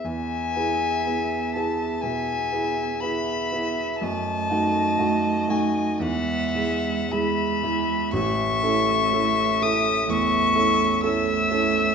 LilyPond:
<<
  \new Staff \with { instrumentName = "Violin" } { \time 4/4 \key e \major \tempo 4 = 61 gis''4. a''8 gis''4 b''4 | a''4. gis''8 fis''4 b''4 | cis'''4. dis'''8 cis'''4 e'''4 | }
  \new Staff \with { instrumentName = "Violin" } { \time 4/4 \key e \major e''2 e''4 e''4 | dis''2 e''4 e''4 | e''2 e''4 e''4 | }
  \new Staff \with { instrumentName = "Grand piano" } { \time 4/4 \key e \major e,8 <b e' gis'>8 <b e' gis'>8 <b e' gis'>8 b,8 <b e' gis'>8 <b e' gis'>8 <b e' gis'>8 | fis,8 <a dis' fis'>8 <a dis' fis'>8 <a dis' fis'>8 e,8 <gis e' gis'>8 <gis e' gis'>8 <gis e' gis'>8 | a,,8 <cis' e' a'>8 <cis' e' a'>8 <cis' e' a'>8 e,8 <cis' e' a'>8 <cis' e' a'>8 <cis' e' a'>8 | }
  \new Staff \with { instrumentName = "Cello" } { \time 4/4 \key e \major b2 b4 b4 | a2 gis4 gis4 | a2 a4 a4 | }
>>